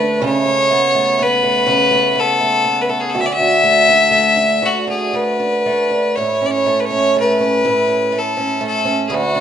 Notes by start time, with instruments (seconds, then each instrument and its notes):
Already playing: steel-string acoustic guitar D2 A3 D4 E4, fiddle B4
0.22 steel-string acoustic guitar C#3 E4, fiddle C#5
0.46 steel-string acoustic guitar A3
0.71 steel-string acoustic guitar B3
0.95 steel-string acoustic guitar A3
1.19 steel-string acoustic guitar B3, fiddle B4
1.43 steel-string acoustic guitar A3
1.67 steel-string acoustic guitar C#3 E4
1.91 steel-string acoustic guitar A3
2.15 steel-string acoustic guitar B3
2.20 fiddle A4
2.41 steel-string acoustic guitar A3
2.64 steel-string acoustic guitar B3
2.81 fiddle B4
2.89 steel-string acoustic guitar A3, fiddle A4
3.00 fiddle G#4
3.10 fiddle A4
3.15 steel-string acoustic guitar D2 F#4
3.20 fiddle E5
3.26 fiddle D5
3.32 fiddle E5
3.40 steel-string acoustic guitar D4
3.64 steel-string acoustic guitar A3
3.88 steel-string acoustic guitar D4
4.11 steel-string acoustic guitar A3
4.36 steel-string acoustic guitar D4
4.62 steel-string acoustic guitar D2 F#4, fiddle F#4
4.87 steel-string acoustic guitar D4, fiddle G#4
5.13 steel-string acoustic guitar A3, fiddle B4
5.40 steel-string acoustic guitar D4
5.66 steel-string acoustic guitar A3
5.91 steel-string acoustic guitar D4
6.16 steel-string acoustic guitar A2 E4, fiddle C#5
6.42 steel-string acoustic guitar C#4
6.46 fiddle D5
6.51 fiddle C#5
6.66 steel-string acoustic guitar A3
6.80 fiddle B4
6.85 fiddle C#5
6.91 steel-string acoustic guitar C#4
7.16 steel-string acoustic guitar A3, fiddle B4
7.41 steel-string acoustic guitar C#4
7.65 steel-string acoustic guitar A2 E4
7.88 steel-string acoustic guitar C#4
8.12 steel-string acoustic guitar A3
8.19 fiddle A4
8.37 steel-string acoustic guitar C#4
8.61 steel-string acoustic guitar A3
8.67 fiddle A4
8.85 steel-string acoustic guitar C#4
9.07 steel-string acoustic guitar D2 E4, fiddle G#4
9.14 fiddle F#4
9.35 steel-string acoustic guitar D4